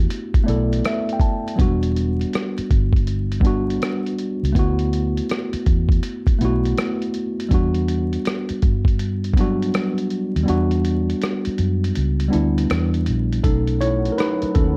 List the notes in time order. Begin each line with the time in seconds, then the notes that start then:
Already playing: A3 B3 D4 E4 F#4 G4
0.10 closed hi-hat
0.34 muted fingered electric bass stroke, kick, closed hi-hat
0.44 A3 B3 D5
0.48 B1 E4 A4, closed hi-hat
0.73 closed hi-hat
0.85 E5, cross-stick, closed hi-hat
1.09 G5, closed hi-hat
1.20 A5, kick, closed hi-hat
1.48 closed hi-hat
1.56 E1 F#3 B3 D4, kick, closed hi-hat
1.61 G3 F#4
1.83 closed hi-hat
1.96 closed hi-hat
2.21 closed hi-hat
2.33 cross-stick, closed hi-hat
2.58 muted fingered electric bass stroke, closed hi-hat
2.71 G1, kick, closed hi-hat
2.93 kick, closed hi-hat
3.07 closed hi-hat
3.32 closed hi-hat
3.40 G3 B3, kick
3.44 D4 F#4, closed hi-hat
3.70 closed hi-hat
3.82 cross-stick, closed hi-hat
4.06 closed hi-hat
4.18 closed hi-hat
4.43 C#2, closed hi-hat
4.53 D2 A3 B3 E4, kick, closed hi-hat
4.59 F#4
4.79 closed hi-hat
4.93 closed hi-hat
5.17 closed hi-hat
5.29 cross-stick, closed hi-hat
5.53 muted fingered electric bass stroke, closed hi-hat
5.66 E2, kick, closed hi-hat
5.89 kick, closed hi-hat
6.03 closed hi-hat
6.27 muted fingered electric bass stroke, kick, closed hi-hat
6.39 B1 A3 B3 E4, closed hi-hat
6.45 F#4
6.65 closed hi-hat
6.78 cross-stick, closed hi-hat
7.02 closed hi-hat
7.14 closed hi-hat
7.40 closed hi-hat
7.49 E2 G3 B3 D4, kick, closed hi-hat
7.54 F#4
7.74 closed hi-hat
7.88 closed hi-hat
8.13 closed hi-hat
8.25 cross-stick, closed hi-hat
8.49 muted fingered electric bass stroke, closed hi-hat
8.62 G2, kick, closed hi-hat
8.85 kick, closed hi-hat
8.99 closed hi-hat
9.24 closed hi-hat
9.34 F#3 B3, kick, closed hi-hat
9.39 G3 D4 F#4
9.62 closed hi-hat
9.74 cross-stick, closed hi-hat
9.98 closed hi-hat
10.10 closed hi-hat
10.36 D#2, closed hi-hat
10.44 G3 B3
10.48 E2 D4 F#4, closed hi-hat
10.71 closed hi-hat
10.85 closed hi-hat
11.10 closed hi-hat
11.22 cross-stick, closed hi-hat
11.45 muted fingered electric bass stroke, closed hi-hat
11.58 F#2, closed hi-hat
11.84 closed hi-hat
11.95 C#2, closed hi-hat
12.20 closed hi-hat
12.28 G3 B3 D4
12.33 D2 E4, closed hi-hat
12.58 closed hi-hat
12.70 E2, cross-stick, closed hi-hat
12.94 closed hi-hat
13.06 A#1, closed hi-hat
13.32 closed hi-hat
13.43 B1 F#3 A3 B3 C#4 D#4 A4 F#5, kick, closed hi-hat
13.67 closed hi-hat
13.81 E4 C#5, closed hi-hat
14.05 closed hi-hat
14.12 A#4
14.18 D#4 B4, cross-stick, closed hi-hat
14.42 muted fingered electric bass stroke, closed hi-hat
14.55 D#2 C#4 A4, kick, closed hi-hat